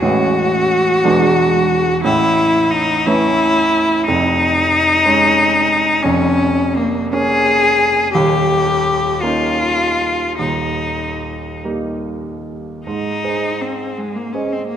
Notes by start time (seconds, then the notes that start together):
0.01 A1 A2 E3 G#3 C#4 F#4
1.04 E1 E2 E3 G#3 D4
2.04 A1 A2 E4
2.71 D#4
3.06 E3 A3 C#4 E4
4.06 F1 F2 D#4
5.06 G#3 C#4
6.03 F1 F2 C#4
6.77 A#3
7.13 A#3 C#4 G#4
8.13 D#1 D#2 G4
9.21 A#3 C#4 D#4 F4
10.39 D#1 D#2 D#4
11.64 G3 A#3 D#4
12.86 G#2 D#4
13.24 G#4 C5 D#5
13.61 C4
13.97 G#3
14.15 A#3
14.33 C#4 G#4 C5 D#5
14.52 C4
14.67 A#3